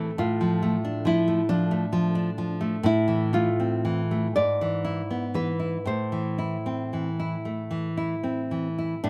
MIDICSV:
0, 0, Header, 1, 3, 480
1, 0, Start_track
1, 0, Key_signature, 0, "minor"
1, 0, Tempo, 887574
1, 102, Time_signature, 6, 3, 24, 8
1, 1540, Tempo, 1010101
1, 2980, Tempo, 1054482
1, 4445, End_track
2, 0, Start_track
2, 0, Title_t, "Nylon-string guitar"
2, 0, Program_c, 0, 24
2, 0, Note_on_c, 0, 69, 54
2, 84, Note_off_c, 0, 69, 0
2, 102, Note_on_c, 0, 65, 52
2, 554, Note_off_c, 0, 65, 0
2, 577, Note_on_c, 0, 64, 62
2, 794, Note_off_c, 0, 64, 0
2, 806, Note_on_c, 0, 62, 62
2, 1517, Note_off_c, 0, 62, 0
2, 1545, Note_on_c, 0, 64, 61
2, 1756, Note_off_c, 0, 64, 0
2, 1773, Note_on_c, 0, 65, 58
2, 2243, Note_off_c, 0, 65, 0
2, 2257, Note_on_c, 0, 74, 57
2, 2712, Note_off_c, 0, 74, 0
2, 2730, Note_on_c, 0, 71, 42
2, 2961, Note_off_c, 0, 71, 0
2, 2977, Note_on_c, 0, 72, 45
2, 3678, Note_off_c, 0, 72, 0
2, 4418, Note_on_c, 0, 62, 56
2, 4445, Note_off_c, 0, 62, 0
2, 4445, End_track
3, 0, Start_track
3, 0, Title_t, "Nylon-string guitar"
3, 0, Program_c, 1, 24
3, 0, Note_on_c, 1, 45, 40
3, 0, Note_on_c, 1, 57, 29
3, 84, Note_off_c, 1, 45, 0
3, 98, Note_on_c, 1, 45, 49
3, 100, Note_off_c, 1, 57, 0
3, 220, Note_on_c, 1, 53, 34
3, 338, Note_on_c, 1, 57, 41
3, 411, Note_off_c, 1, 53, 0
3, 457, Note_on_c, 1, 62, 38
3, 527, Note_off_c, 1, 57, 0
3, 568, Note_on_c, 1, 53, 42
3, 645, Note_off_c, 1, 62, 0
3, 690, Note_on_c, 1, 57, 39
3, 759, Note_off_c, 1, 53, 0
3, 806, Note_on_c, 1, 53, 35
3, 880, Note_off_c, 1, 57, 0
3, 925, Note_on_c, 1, 57, 39
3, 998, Note_off_c, 1, 53, 0
3, 1041, Note_on_c, 1, 53, 39
3, 1120, Note_off_c, 1, 57, 0
3, 1164, Note_on_c, 1, 62, 45
3, 1240, Note_off_c, 1, 53, 0
3, 1287, Note_on_c, 1, 53, 37
3, 1363, Note_off_c, 1, 62, 0
3, 1409, Note_on_c, 1, 57, 36
3, 1488, Note_off_c, 1, 53, 0
3, 1518, Note_off_c, 1, 45, 0
3, 1533, Note_on_c, 1, 45, 55
3, 1538, Note_off_c, 1, 57, 0
3, 1649, Note_on_c, 1, 52, 34
3, 1769, Note_on_c, 1, 57, 39
3, 1840, Note_off_c, 1, 52, 0
3, 1896, Note_on_c, 1, 60, 38
3, 1964, Note_off_c, 1, 57, 0
3, 2015, Note_on_c, 1, 52, 42
3, 2092, Note_off_c, 1, 60, 0
3, 2141, Note_on_c, 1, 57, 37
3, 2213, Note_off_c, 1, 52, 0
3, 2238, Note_off_c, 1, 45, 0
3, 2261, Note_off_c, 1, 57, 0
3, 2261, Note_on_c, 1, 44, 39
3, 2379, Note_on_c, 1, 52, 36
3, 2489, Note_on_c, 1, 64, 34
3, 2566, Note_off_c, 1, 52, 0
3, 2613, Note_on_c, 1, 59, 33
3, 2681, Note_off_c, 1, 64, 0
3, 2726, Note_on_c, 1, 52, 32
3, 2805, Note_off_c, 1, 59, 0
3, 2846, Note_on_c, 1, 64, 25
3, 2926, Note_off_c, 1, 52, 0
3, 2961, Note_off_c, 1, 44, 0
3, 2969, Note_on_c, 1, 45, 39
3, 2975, Note_off_c, 1, 64, 0
3, 3091, Note_on_c, 1, 52, 26
3, 3211, Note_on_c, 1, 64, 30
3, 3289, Note_off_c, 1, 52, 0
3, 3335, Note_on_c, 1, 60, 28
3, 3408, Note_off_c, 1, 64, 0
3, 3459, Note_on_c, 1, 52, 28
3, 3529, Note_off_c, 1, 60, 0
3, 3580, Note_on_c, 1, 64, 28
3, 3650, Note_off_c, 1, 52, 0
3, 3697, Note_on_c, 1, 57, 25
3, 3769, Note_off_c, 1, 64, 0
3, 3812, Note_on_c, 1, 52, 28
3, 3888, Note_off_c, 1, 57, 0
3, 3934, Note_on_c, 1, 64, 30
3, 4007, Note_off_c, 1, 52, 0
3, 4053, Note_on_c, 1, 60, 29
3, 4131, Note_off_c, 1, 64, 0
3, 4179, Note_on_c, 1, 52, 26
3, 4252, Note_off_c, 1, 60, 0
3, 4303, Note_on_c, 1, 64, 24
3, 4372, Note_off_c, 1, 52, 0
3, 4396, Note_off_c, 1, 45, 0
3, 4418, Note_on_c, 1, 45, 49
3, 4420, Note_off_c, 1, 64, 0
3, 4445, Note_off_c, 1, 45, 0
3, 4445, End_track
0, 0, End_of_file